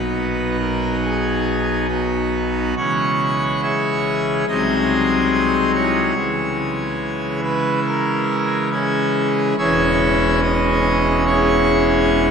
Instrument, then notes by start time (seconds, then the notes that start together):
pipe organ
Already playing: B1 B2 F#3 B3 D#4 F#4 B4
0.60 A#4
1.03 G#4
1.89 B3 D#4 F#4
2.77 C#3 E3 G#3 C#4 C#5 F#5
3.63 G#4 C#5 E5
4.48 C2 C3 F#3 G#3 D#4 G#4 C5 D#5
5.75 E4 G#4 C#5
6.17 C#3 E3 G#3 E4
7.44 B4
7.87 A#4
8.72 C#4 E4 G#4
9.58 E1 E2 E3 G#3 C#4 G#4 C#5 E5
10.43 D#5
11.27 E4 G#4 C#5